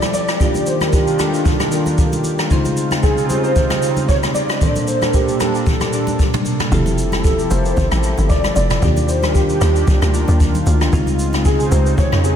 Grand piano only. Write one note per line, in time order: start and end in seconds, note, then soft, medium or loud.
0.00 0.12 D5 loud
0.14 0.63 D5 loud
0.66 0.71 C5 medium
0.81 0.92 A#4 medium
0.93 1.94 G4 medium
3.03 3.28 G#4 medium
3.29 3.42 C5 medium
3.44 4.10 C5 loud
4.08 4.14 C#5 loud
4.34 4.83 D5 loud
4.84 5.02 C5 loud
4.84 4.87 D5 medium
5.02 5.13 A#4 medium
5.14 6.15 G4 medium
7.24 7.49 A4 loud
7.50 7.63 C5 loud
7.65 8.25 C5 loud
8.29 8.54 D5 loud
8.55 9.10 D5 loud
9.08 9.22 C5 loud
9.22 9.35 A#4 medium
9.34 10.36 G4 medium
11.45 11.73 G#4 loud
11.71 11.84 C5 loud
11.86 11.98 C5 loud
11.98 12.22 C#5 loud
12.24 12.36 G#4 medium